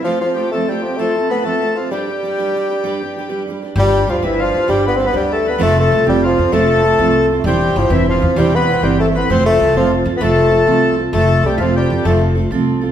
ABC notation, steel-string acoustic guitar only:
X:1
M:12/8
L:1/8
Q:3/8=130
K:Flyd
V:1 name="Steel-string acoustic guitar"
[F,A,CFA] [CFA] [A,CFA] [F,A,CFA] [A,CFA] [CFA] [F,A,CFA] [CFA] [A,CFA] [F,A,CFA] [A,CFA] [CFA] | [G,DGB] [DGB] [G,DGB] [G,DGB] [G,DGB] [DGB] [G,DGB] [DGB] [G,DGB] [G,DGB] [G,DGB] [DGB] | [G,DGB]2 [G,DGB] [G,DGB]2 [DGB] [G,DGB]2 [G,DGB] [G,DGB]2 [DGB] | [F,A,CFA]2 [A,CFA] [F,A,CFA]2 [CFA] [F,A,CFA]2 [A,CFA] [F,A,CFA]2 [CFA] |
[E,G,CEc]2 [G,CEc] [E,G,CEc]2 [CE] [E,G,CEc]2 [G,CEc] [E,G,CEc]2 [CEc] | [F,A,CFA]2 [A,CFA] [F,A,CFA]2 [CFA] [F,A,CFA]2 [A,CFA] [F,A,CFA]2 [CFA] | [F,A,CFA]2 [A,CFA] [F,A,CFA]2 [CFA] [F,A,CFA]2 [A,CFA] [F,A,CFA]2 [CFA] |]